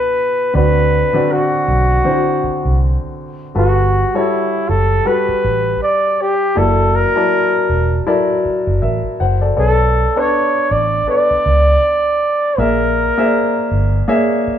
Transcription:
0.00 0.56 B2 medium
0.00 0.56 B3 medium
0.00 0.57 A4 medium
0.00 0.51 B4 medium
0.54 1.02 D2 medium
0.54 1.06 D3 medium
0.54 1.06 C4 medium
0.54 1.06 F#4 medium
0.54 1.34 B4 loud
0.54 1.07 D5 medium
1.13 1.96 D3 medium
1.13 1.96 C4 medium
1.13 1.96 F#4 medium
1.13 1.96 D5 medium
1.32 2.81 F#4 medium
1.68 1.98 B1 medium
2.04 3.41 D3 medium
2.04 3.41 C4 medium
2.04 2.13 E4 soft
2.04 3.41 C5 medium
2.12 3.45 F#4 medium
2.44 muted fingered electric bass stroke soft
2.65 2.95 C2 medium
3.54 4.03 G1 medium
3.54 4.07 G3 medium
3.54 4.07 F#4 medium
3.54 4.18 F#4 medium
3.54 4.07 A4 medium
3.54 4.07 B4 medium
4.14 4.96 G3 medium
4.14 4.70 E4 medium
4.14 4.97 F#4 medium
4.14 4.97 A4 medium
4.14 4.97 C#5 medium
4.69 4.99 F#1 medium
4.69 5.09 A4 medium
5.05 6.41 G3 medium
5.05 6.42 F#4 medium
5.05 6.42 A4 medium
5.05 6.42 B4 medium
5.05 5.82 B4 medium
5.29 muted fingered electric bass stroke soft
5.44 5.74 A1 medium
5.83 6.23 D5 medium
6.21 6.60 G4 medium
6.55 7.04 F#1 medium
6.55 7.08 F#3 medium
6.55 7.08 A#3 medium
6.55 7.08 E4 medium
6.55 7.08 A4 medium
6.55 6.97 A4 medium
6.55 7.08 D5 medium
6.95 8.07 A#4 medium
7.16 7.98 F#3 medium
7.16 7.98 E4 medium
7.16 7.98 A#4 medium
7.16 7.98 D5 medium
7.16 7.98 A5 medium
7.69 7.99 E1 medium
8.06 9.43 F#3 medium
8.06 9.43 E4 medium
8.06 8.82 A4 medium
8.06 8.81 A#4 medium
8.06 8.82 D5 medium
8.45 muted fingered electric bass stroke soft
8.67 8.79 F#1 medium
8.82 9.00 A1 medium
8.82 9.18 A#4 soft
8.82 9.18 E5 medium
9.20 9.50 F#1 medium
9.20 9.41 C5 medium
9.20 9.40 F#5 medium
9.41 9.55 A4 medium
9.41 9.56 D5 medium
9.56 10.05 B1 medium
9.56 10.09 B3 medium
9.56 10.09 A4 medium
9.56 10.20 A4 medium
9.56 10.09 C#5 medium
9.56 10.09 D5 medium
10.16 10.98 B3 medium
10.16 10.99 D4 medium
10.16 10.98 A4 medium
10.16 10.99 C#5 medium
10.16 10.74 C#5 medium
10.71 11.01 A1 medium
10.71 11.09 D5 medium
11.07 12.43 B3 medium
11.07 12.44 A4 medium
11.07 12.44 B4 medium
11.07 12.44 D5 medium
11.07 12.60 D5 loud
11.31 muted fingered electric bass stroke soft
11.46 11.76 C#2 medium
12.58 13.06 A#1 medium
12.58 13.10 A#3 medium
12.58 13.10 G#4 medium
12.58 14.09 A#4 medium
12.58 13.11 D5 medium
12.58 13.11 E5 medium
13.18 14.00 A#3 medium
13.18 14.00 G#4 medium
13.18 13.23 C5 medium
13.18 14.00 E5 medium
13.25 14.03 D5 medium
13.71 14.01 G1 medium
14.08 14.59 A#3 medium
14.08 14.59 G#4 medium
14.08 14.16 C#5 medium
14.08 14.59 E5 medium
14.15 14.59 D5 medium
14.47 muted fingered electric bass stroke soft

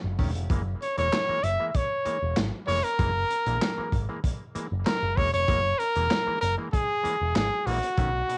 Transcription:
0.04 0.15 F#1 medium
0.19 0.35 E1 medium
0.19 0.30 D#3 medium
0.19 0.31 A3 medium
0.19 0.31 C#4 loud
0.19 kick medium
0.19 open hi-hat medium
0.35 0.47 F1 medium
0.35 0.42 A3 soft
0.35 0.42 C#4 soft
0.35 closed hi-hat medium
0.50 0.74 F#1 loud
0.50 0.62 E3 medium
0.50 0.62 G#3 medium
0.50 0.62 A#3 loud
0.50 kick loud
0.50 closed hi-hat medium
0.82 0.97 C#5 medium
0.82 closed hi-hat medium
0.97 1.09 E1 medium
0.97 1.08 E3 medium
0.97 1.08 G#3 medium
0.97 1.08 A#3 medium
0.97 1.45 C#5 loud
0.97 closed hi-hat medium
1.13 snare loud
1.13 clap loud
1.13 closed hi-hat medium
1.29 1.39 E3 medium
1.29 1.39 G#3 medium
1.29 1.39 A#3 medium
1.29 muted picked electric bass stroke soft
1.43 1.56 F#1 medium
1.43 1.68 E5 loud
1.43 closed hi-hat medium
1.60 1.70 E3 medium
1.60 1.70 G#3 medium
1.60 1.70 A#3 medium
1.68 1.77 E5 medium
1.75 1.81 G#3 soft
1.75 1.81 A#3 soft
1.75 2.38 C#5 medium
1.75 kick loud
1.75 closed hi-hat loud
2.05 2.17 E3 medium
2.05 2.18 G#3 medium
2.05 2.17 A#3 medium
2.05 muted picked electric bass stroke soft
2.05 closed hi-hat medium
2.22 2.33 E1 medium
2.37 2.50 G#1 loud
2.37 snare loud
2.37 clap medium
2.37 closed hi-hat medium
2.67 2.81 F1 medium
2.67 2.79 E3 medium
2.67 2.79 G#3 medium
2.67 2.80 A#3 loud
2.67 2.85 C#5 loud
2.67 open hi-hat medium
2.84 4.09 A#4 loud
2.84 closed hi-hat medium
2.99 3.23 F#1 loud
2.99 3.11 E3 medium
2.99 3.11 G#3 medium
2.99 3.11 A#3 loud
2.99 kick loud
2.99 closed hi-hat medium
3.30 closed hi-hat medium
3.46 3.58 A#1 medium
3.46 3.57 E3 medium
3.46 3.57 G#3 medium
3.46 3.57 A#3 medium
3.46 closed hi-hat medium
3.62 snare loud
3.62 clap loud
3.62 closed hi-hat medium
3.78 3.88 E3 medium
3.78 3.88 G#3 medium
3.78 3.89 A#3 medium
3.78 muted picked electric bass stroke soft
3.92 4.05 G#1 medium
3.92 kick medium
3.92 closed hi-hat medium
4.09 4.19 E3 medium
4.09 4.20 G#3 medium
4.09 4.20 A#3 medium
4.24 4.31 G#3 soft
4.24 4.31 A#3 medium
4.24 kick loud
4.24 closed hi-hat loud
4.55 4.67 E3 medium
4.55 4.67 G#3 medium
4.55 4.67 A#3 medium
4.55 muted picked electric bass stroke medium
4.55 closed hi-hat medium
4.72 4.83 F#1 loud
4.86 5.18 A#4 loud
4.86 snare loud
4.86 clap medium
4.86 closed hi-hat medium
5.03 5.14 F#1 medium
5.17 5.30 E1 medium
5.17 5.29 E3 medium
5.17 5.29 G#3 medium
5.17 5.29 A#3 medium
5.17 5.33 C#5 loud
5.17 kick medium
5.17 open hi-hat medium
5.34 5.45 F1 medium
5.34 5.40 G#3 soft
5.34 5.40 A#3 soft
5.34 5.80 C#5 loud
5.34 closed hi-hat medium
5.48 5.72 F#1 loud
5.48 5.60 E3 medium
5.48 5.60 G#3 medium
5.48 5.60 A#3 loud
5.48 kick loud
5.48 closed hi-hat medium
5.79 6.41 A#4 loud
5.79 closed hi-hat medium
5.95 6.07 E1 medium
5.95 6.06 E3 medium
5.95 6.07 G#3 medium
5.95 6.07 A#3 medium
5.95 closed hi-hat medium
6.11 snare loud
6.11 clap loud
6.11 closed hi-hat medium
6.27 6.37 E3 medium
6.27 6.38 G#3 medium
6.27 6.38 A#3 medium
6.27 muted picked electric bass stroke soft
6.41 6.55 F#1 medium
6.41 6.56 A#4 loud
6.41 closed hi-hat medium
6.58 6.68 E3 medium
6.58 6.69 G#3 medium
6.58 6.69 A#3 medium
6.72 6.79 G#3 soft
6.72 6.79 A#3 medium
6.72 7.31 G#4 medium
6.72 kick loud
6.72 closed hi-hat loud
7.03 7.15 E3 medium
7.03 7.16 G#3 medium
7.03 7.16 A#3 medium
7.03 muted picked electric bass stroke medium
7.03 closed hi-hat medium
7.21 7.32 E1 medium
7.36 7.48 G#1 loud
7.36 7.68 G#4 medium
7.36 snare loud
7.36 clap loud
7.36 closed hi-hat medium
7.66 7.79 A#1 loud
7.66 7.78 E3 medium
7.66 7.78 G#3 medium
7.66 7.78 A#3 medium
7.66 8.38 F#4 medium
7.66 open hi-hat medium
7.83 7.89 G#3 soft
7.83 7.89 A#3 soft
7.83 closed hi-hat medium
7.97 8.21 B1 loud
7.97 8.09 D#3 loud
7.97 8.09 A3 medium
7.97 8.09 C#4 loud
7.97 kick loud
7.97 closed hi-hat medium
8.29 8.38 B2 medium
8.29 closed hi-hat medium

